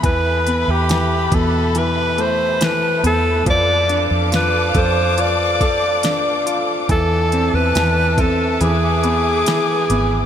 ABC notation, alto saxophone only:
X:1
M:4/4
L:1/16
Q:1/4=70
K:Ephr
V:1 name="Alto saxophone"
B3 G3 A2 B2 c2 B2 A2 | d3 z B2 c2 d6 z2 | A3 B3 A2 ^G8 |]